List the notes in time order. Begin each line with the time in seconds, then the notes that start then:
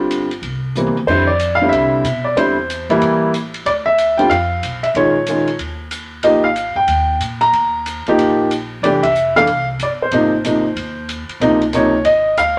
Already playing: G1 D3 G3 C4 F4
0.11 hi-hat pedal, ride
0.31 ride
0.42 C2, ride
0.75 E3 G3 A#3 C4, hi-hat pedal, mid tom
0.87 mid tom
0.96 muted upright bass stroke, mid tom
1.07 F2 D3 G3 C4 E4 C5, kick, crash
1.27 D5
1.40 hi-hat pedal, ride
1.55 F5
1.61 D3 G3 C4 E4
1.69 C2 E5, ride
2.04 B2, hi-hat pedal, ride
2.24 D5
2.36 E2 D3 G3 C4 E4 C5, ride
2.70 hi-hat pedal, ride
2.89 A#1 E3 G3 A#3 E4, ride
3.01 A1, ride
3.34 hi-hat pedal, ride
3.54 ride
3.65 D2 D5, ride
3.86 E5
3.98 hi-hat pedal, ride
4.17 D3 G3 C4 F4 G5, ride
4.30 F2 F5, ride
4.63 B1, hi-hat pedal, ride
4.83 E5, ride
4.94 A#1 D#3 G#3 C#4 F4 C#5, ride
5.27 D#3 G#3 C#4 F4, hi-hat pedal, ride
5.48 ride
5.59 D#2, ride
5.91 hi-hat pedal, ride
6.23 G#1 F3 A#3 D#4 G4 D#5, ride
6.44 F5
6.56 hi-hat pedal, ride
6.75 G1 G5
6.87 D#2, ride
7.20 A#2, hi-hat pedal, ride
7.41 A#5, ride
7.53 D#2, ride
7.86 hi-hat pedal, ride
8.07 F3 A#3 D#4 G4, muted upright bass stroke, ride
8.18 A#1, ride
8.51 hi-hat pedal, ride
8.82 F1 E3 A3 D4 G4 D5, ride
9.03 E5, kick, ride
9.15 hi-hat pedal
9.36 E3 A3 D4 A4 F5
9.47 C2, ride
9.79 G1 D5, hi-hat pedal, ride
10.02 C5
10.11 G#1 C3 F3 A#3 D#4, ride
10.44 C3 F3 A#3 D#4, hi-hat pedal, ride
10.76 D#2, ride
11.09 hi-hat pedal, ride
11.28 muted upright bass stroke, ride
11.40 C#2 C3 F3 A#3 D#4, ride
11.62 ride
11.73 C3 F3 A#3 D#4 C#5, hi-hat pedal, ride
12.05 G#1 D#5, ride
12.37 D2 F5, hi-hat pedal, ride